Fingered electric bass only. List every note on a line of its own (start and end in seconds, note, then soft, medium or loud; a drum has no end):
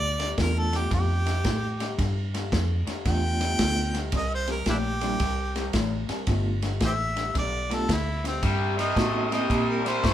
0.00 0.36 D2 medium
0.38 0.90 E2 medium
0.91 1.43 F2 medium
1.45 1.97 A2 medium
1.98 2.50 G2 medium
2.52 2.85 F2 medium
2.87 muted fingered electric bass stroke soft
3.05 3.58 E2 medium
3.59 4.11 D2 medium
4.13 4.65 C2 medium
4.66 5.19 A#1 medium
5.20 5.72 C2 medium
5.74 6.07 A1 medium
6.09 muted fingered electric bass stroke soft
6.27 6.80 G1 medium
6.81 7.33 A1 medium
7.35 7.87 B1 medium
7.89 8.41 D2 medium
8.43 8.95 G2 medium
8.97 9.48 A2 medium
9.50 10.02 A#2 medium
10.04 10.14 G2 medium